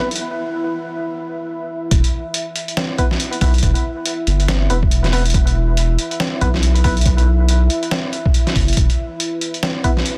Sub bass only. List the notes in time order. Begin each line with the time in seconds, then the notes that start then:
Already playing: B1
1.91 E1
3.41 B1
3.63 E1
4.27 G1
4.70 E1
6.41 B1
8.56 F#1
8.77 E1